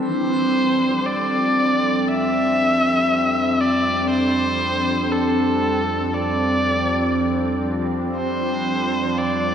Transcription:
0.00 9.55 F2 medium
0.00 0.13 E3 medium
0.00 9.55 F3 medium
0.00 9.55 G3 medium
0.00 9.55 C4 medium
0.00 9.55 D4 medium
0.00 8.17 A4 medium
0.05 1.08 C5 medium
1.07 2.10 D5 medium
2.08 3.62 E5 loud
3.61 4.10 D5 medium
4.11 5.14 C5 loud
5.12 6.15 A4 medium
6.13 7.66 D5 medium
8.17 9.20 C5 medium
9.18 9.55 D5 medium

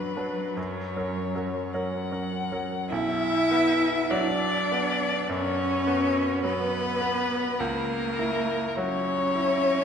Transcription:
0.00 0.57 F#2 medium
0.00 0.16 F#3 soft
0.00 2.31 F#3 medium
0.00 0.17 D4 soft
0.00 0.17 B4 medium
0.00 0.58 B4 medium
0.16 0.53 F#3 soft
0.16 0.53 D4 soft
0.16 0.53 B4 soft
0.57 0.95 F#2 medium
0.57 1.74 C#5 medium
0.96 1.31 F#3 soft
0.96 1.31 C#4 soft
0.96 1.32 A#4 soft
1.35 1.69 F#3 soft
1.35 1.70 C#4 soft
1.35 1.70 A#4 soft
1.72 2.08 F#3 soft
1.72 2.08 C#4 soft
1.72 2.09 A#4 soft
1.72 2.90 F#5 medium
2.12 2.47 F#3 soft
2.12 2.47 C#4 soft
2.12 2.47 A#4 soft
2.52 2.87 F#3 soft
2.52 2.87 C#4 soft
2.52 2.87 A#4 soft
2.89 5.25 B1 medium
2.89 4.11 E4 loud
2.89 4.12 E5 loud
3.51 4.46 B3 medium
4.10 5.05 F#3 medium
4.10 5.30 D4 medium
4.10 5.30 D5 loud
4.72 5.64 B3 medium
5.28 6.21 F#2 medium
5.28 6.43 C#4 loud
5.28 6.43 C#5 loud
5.87 6.78 B3 medium
6.43 7.36 F#3 medium
6.43 7.61 B3 loud
6.43 7.61 B4 loud
7.01 7.59 B3 medium
7.59 9.84 C#2 medium
7.59 8.79 A#3 medium
7.59 8.77 A#4 medium
8.19 9.12 E4 medium
8.76 9.70 F#3 medium
8.76 9.84 C#4 medium
8.76 9.84 C#5 loud
9.35 9.84 E4 medium

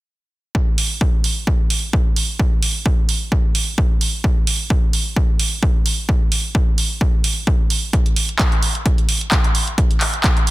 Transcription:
0.55 kick loud
0.78 open hi-hat loud
1.01 kick loud
1.24 open hi-hat medium
1.47 kick loud
1.70 open hi-hat loud
1.93 kick loud
2.16 open hi-hat medium
2.39 kick loud
2.63 open hi-hat medium
2.86 kick loud
3.09 open hi-hat medium
3.32 kick loud
3.55 open hi-hat loud
3.78 kick loud
4.01 open hi-hat medium
4.24 kick loud
4.47 open hi-hat loud
4.70 kick loud
4.93 open hi-hat medium
5.16 kick loud
5.40 open hi-hat loud
5.63 kick loud
5.86 open hi-hat medium
6.09 kick loud
6.32 open hi-hat loud
6.55 kick loud
6.78 open hi-hat medium
7.01 kick loud
7.24 open hi-hat loud
7.47 kick loud
7.70 open hi-hat medium
7.93 kick loud
7.93 closed hi-hat medium
8.06 closed hi-hat soft
8.16 open hi-hat loud
8.29 closed hi-hat soft
8.39 kick loud
8.39 clap loud
8.39 closed hi-hat medium
8.52 closed hi-hat soft
8.63 open hi-hat medium
8.75 closed hi-hat soft
8.86 kick loud
8.86 closed hi-hat medium
8.98 closed hi-hat soft
9.09 open hi-hat medium
9.21 closed hi-hat soft
9.31 kick loud
9.31 clap loud
9.31 closed hi-hat medium
9.44 closed hi-hat soft
9.55 open hi-hat medium
9.68 closed hi-hat soft
9.78 kick loud
9.78 closed hi-hat medium
9.91 closed hi-hat soft
10.01 clap medium
10.01 open hi-hat loud
10.14 closed hi-hat soft
10.24 kick loud
10.24 clap loud
10.24 closed hi-hat medium
10.37 closed hi-hat soft
10.47 open hi-hat medium

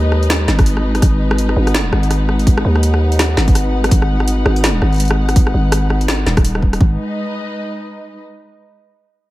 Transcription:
0.00 0.47 D#2 loud
0.00 6.80 G#3 medium
0.00 6.81 D#4 medium
0.00 6.81 B4 medium
0.00 1.64 D#5 medium
0.12 cross-stick medium
0.23 closed hi-hat soft
0.30 cross-stick soft
0.30 snare loud
0.30 closed hi-hat medium
0.48 1.01 G#1 loud
0.48 snare medium
0.59 kick loud
0.59 cross-stick medium
0.59 closed hi-hat soft
0.66 closed hi-hat medium
0.77 cross-stick medium
0.95 cross-stick soft
0.95 closed hi-hat soft
1.02 1.55 G#1 loud
1.02 kick loud
1.02 cross-stick soft
1.02 closed hi-hat medium
1.31 cross-stick medium
1.38 closed hi-hat medium
1.49 cross-stick soft
1.56 1.91 G#1 loud
1.62 6.83 F#5 medium
1.67 cross-stick medium
1.67 closed hi-hat soft
1.74 snare loud
1.74 closed hi-hat medium
1.93 2.64 G#1 loud
1.93 cross-stick medium
2.03 closed hi-hat soft
2.11 cross-stick medium
2.11 closed hi-hat medium
2.29 cross-stick soft
2.39 closed hi-hat soft
2.47 kick loud
2.47 closed hi-hat medium
2.57 cross-stick medium
2.65 3.36 D#2 loud
2.76 cross-stick medium
2.83 closed hi-hat medium
2.94 cross-stick medium
3.12 closed hi-hat soft
3.19 cross-stick medium
3.19 snare loud
3.19 closed hi-hat medium
3.37 3.90 G#1 loud
3.37 cross-stick medium
3.37 snare medium
3.48 kick loud
3.48 closed hi-hat soft
3.55 cross-stick medium
3.55 closed hi-hat medium
3.84 cross-stick medium
3.84 closed hi-hat soft
3.91 4.44 G#1 loud
3.91 kick loud
3.91 closed hi-hat medium
4.02 cross-stick medium
4.20 cross-stick medium
4.28 closed hi-hat medium
4.46 4.81 G#1 loud
4.46 cross-stick medium
4.56 closed hi-hat soft
4.64 cross-stick medium
4.64 snare loud
4.64 closed hi-hat medium
4.82 5.53 G#1 loud
4.82 cross-stick medium
4.93 closed hi-hat soft
4.94 closed hi-hat soft
4.96 closed hi-hat soft
4.98 closed hi-hat soft
5.00 closed hi-hat medium
5.03 closed hi-hat soft
5.05 closed hi-hat soft
5.08 cross-stick medium
5.08 closed hi-hat soft
5.29 cross-stick medium
5.29 closed hi-hat soft
5.36 kick loud
5.36 closed hi-hat medium
5.47 cross-stick medium
5.54 6.25 G#1 loud
5.72 cross-stick medium
5.72 closed hi-hat medium
5.90 cross-stick medium
6.01 closed hi-hat soft
6.08 cross-stick medium
6.08 snare loud
6.08 closed hi-hat medium
6.26 6.79 D#1 loud
6.26 snare medium
6.37 kick loud
6.37 cross-stick medium
6.37 closed hi-hat soft
6.45 closed hi-hat medium
6.55 cross-stick medium
6.63 kick medium
6.73 cross-stick medium
6.73 closed hi-hat soft
6.80 6.97 G#1 loud
6.80 8.21 G#3 medium
6.80 kick loud
6.87 8.21 D#4 medium
6.93 8.21 B4 medium
6.97 8.21 D#5 medium

